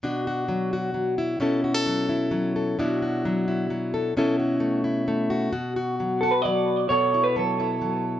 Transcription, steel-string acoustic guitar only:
\new Staff \with { instrumentName = "Steel-string acoustic guitar" } { \time 3/4 \key b \minor \tempo 4 = 131 << { <d' fis'>8 fis'4 fis'4 e'8 | <cis' e' a'>8 fis'16 a'8. e'4 a'8 | <d' e' fis'>8 fis'4 e'4 a'8 | <cis' e' a'>8 fis'4 e'4 fis'8 |
fis'8 fis'4 fis'4. | a'8 e'4 e'4. | } \\ { b,4 fis4 fis4 | b,4 fis4 fis4 | b,4 fis4 fis4 | b,4 a4 a4 |
b,4 fis4 fis4 | b,4 fis4 fis4 | } >> }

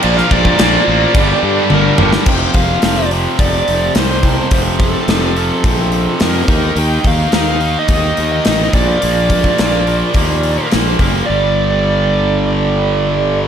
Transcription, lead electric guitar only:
\new Staff \with { instrumentName = "Lead electric guitar" } { \time 4/4 \key f \mixolydian \tempo 4 = 106 << { d''16 f''16 d''2. r8 | r1 | r1 | r1 |
r1 | r1 | } \\ { r2. bes'4 | g''8 f''4 r8 d''4 c''4 | c''8 a'2~ a'8 bes'4 | g''8 f''4~ f''16 ees''4 ees''8. d''8~ |
d''2. r4 | d''1 | } >> }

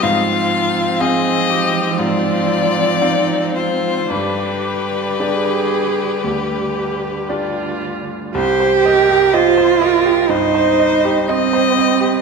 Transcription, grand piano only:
\new Staff \with { instrumentName = "Grand piano" } { \time 4/4 \key c \minor \tempo 4 = 60 aes,4 <c' f' f''>4 aes,4 <c' f' f''>4 | g,4 <d' g' d''>4 d,4 <d' g' d''>4 | c,16 c''16 ees''16 g'16 ees''16 c''16 ees''16 g'16 g,16 c''16 ees''16 g'16 ees''16 c''16 ees''16 g'16 | }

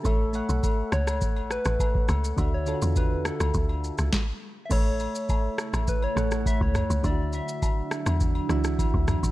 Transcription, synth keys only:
\new Staff \with { instrumentName = "Synth keys" } { \time 4/4 \key a \major \tempo 4 = 103 <a a' cis'' e''>8 <a a' cis'' fis''>4. r2 | <d d' fis' e''>8 <d d' f' fis' a'>4. r2 | <a a' b' cis'' e''>4. r4 <a a' cis'' fis''>4~ <a a' cis'' fis''>16 r16 | <d d' e' fis' e''>4. r4 <e d' fis' e''>4~ <e d' fis' e''>16 r16 | }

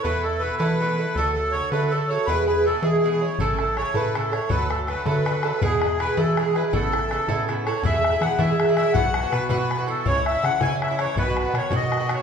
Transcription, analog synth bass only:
\new Staff \with { instrumentName = "Analog synth bass" } { \clef bass \time 6/8 \key a \major \tempo 4. = 108 e,4. e4. | d,4. d4. | e,4. e4. | a,,4. a,4. |
d,4. d4. | e,4. e4. | a,,4. a,4. | \key e \major e,4 e16 r16 e4. |
b,,4 b,16 r16 b,4. | cis,4 cis16 r16 cis4. | b,,4 b,16 r16 b,4. | }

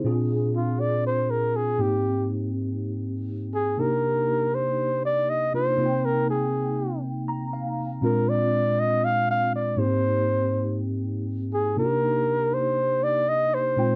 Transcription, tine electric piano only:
\new Staff \with { instrumentName = "Tine electric piano" } { \time 4/4 \key c \minor \tempo 4 = 120 << { r1 | r1 | r1 | r2 r8 bes''8 f''4 |
r1 | r1 | r1 | } \\ { <bes, c' d' f' aes'>2.~ <bes, c' d' f' aes'>8 <aes, bes c' ees' g'>8~ | <aes, bes c' ees' g'>2.~ <aes, bes c' ees' g'>8 <c bes d' ees' g'>8~ | <c bes d' ees' g'>2. <c bes d' ees' f'>8 <c bes c' ees' f' g''>8~ | <c bes c' ees' f' g''>2.~ <c bes c' ees' f' g''>8 r8 |
<bes, aes c' d' f'>2.~ <bes, aes c' d' f'>8 <aes, bes c' ees' g'>8~ | <aes, bes c' ees' g'>2.~ <aes, bes c' ees' g'>8 <c bes d' ees' f' g'>8~ | <c bes d' ees' f' g'>2.~ <c bes d' ees' f' g'>8 <bes, aes c' ees' f' g''>8 | } >> }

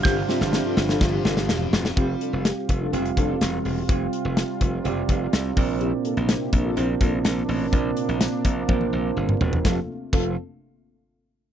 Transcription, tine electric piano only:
<<
  \new Staff \with { instrumentName = "Tine electric piano" } { \time 4/4 \key f \major \tempo 4 = 125 <d' f' g' c'' f''>8 <d' f' g' c'' e''>4.~ <d' f' g' c'' e''>16 r4. r16 | <c' f' g' f''>4.~ <c' f' g' f''>16 r16 <c' f' g' f''>4.~ <c' f' g' f''>16 r16 | <c' f' g' f''>4.~ <c' f' g' f''>16 r16 <c' f' g' d''>4. <c' f' bes' d''>8~ | <c' f' bes' d''>4~ <c' f' bes' d''>16 r8. <c' f' bes' c''>4.~ <c' f' bes' c''>16 r16 |
<c' f' bes' d''>4.~ <c' f' bes' d''>16 r16 <c' f' bes' c''>4.~ <c' f' bes' c''>16 r16 | <c' f' a' f''>8 r8 <c' f' a' f''>8 r2 r8 | }
  \new Staff \with { instrumentName = "Tine electric piano" } { \clef bass \time 4/4 \key f \major g,4. r2 r8 | r1 | r2. r8 bes,8~ | bes,4 r2 r8 bes,8~ |
bes,4 r2. | f,8 r8 f,8 r2 r8 | }
>>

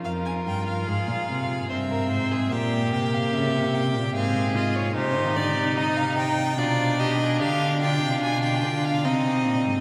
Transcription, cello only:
\new Staff \with { instrumentName = "Cello" } { \clef bass \time 3/4 \key f \minor \tempo 4 = 73 f,8 g,8 aes,16 bes,16 c8 g,8 aes,8 | bes,8 c8 des16 c8 bes,16 aes,4 | c16 ees16 d16 c4~ c16 b,4 | d8 d16 c16 b,8 d8 c8 bes,16 aes,16 | }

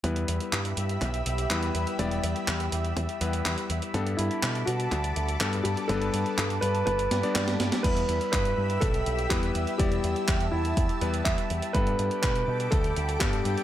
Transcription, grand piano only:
\new Staff \with { instrumentName = "Grand piano" } { \time 4/4 \key e \minor \tempo 4 = 123 r1 | r1 | r8 e'4 fis'2 g'8 | a'4. b'8 b'4 d''4 |
b'4 b'4 a'4 g'4 | g'4. e'4. e''4 | b'4 b'4 a'4 g'4 | }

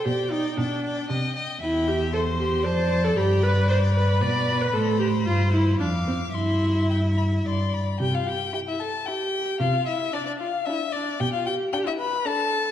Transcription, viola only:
\new Staff \with { instrumentName = "Viola" } { \time 3/4 \key g \minor \tempo 4 = 114 g'8 ees'8 d'4 r4 | \key c \major e'8 g'8 a'8 g'8 c''8. a'16 | g'8 b'8 c''8 b'8 d''8. b'16 | a'8 g'8 f'8 e'8 d'8 c'8 |
e'2 r4 | g'16 f'16 g'8 g'16 e'16 a'8 g'4 | f'8 e'8 d'16 d'16 f'8 e'8 d'8 | g'16 f'16 g'8 g'16 e'16 b'8 a'4 | }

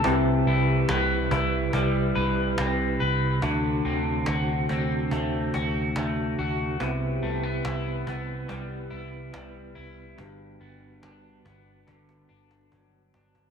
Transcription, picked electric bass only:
\new Staff \with { instrumentName = "Picked electric bass" } { \clef bass \time 4/4 \key c \lydian \tempo 4 = 71 c,8 c,8 c,8 c,8 c,8 c,8 c,8 c,8 | d,8 d,8 d,8 d,8 d,8 d,8 d,8 d,8 | c,8 c,8 c,8 c,8 c,8 c,8 c,8 c,8 | g,,8 g,,8 g,,8 g,,8 g,,8 g,,8 g,,8 g,,8 | }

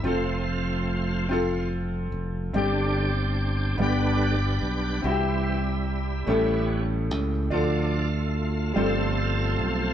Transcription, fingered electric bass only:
\new Staff \with { instrumentName = "Fingered electric bass" } { \clef bass \time 6/8 \key g \mixolydian \tempo 4. = 48 f,,2~ f,,8 f,,8 | g,,4. g,,4 b,,8 | c,4. a,,4 cis,8 | d,4. g,,4 b,,8 | }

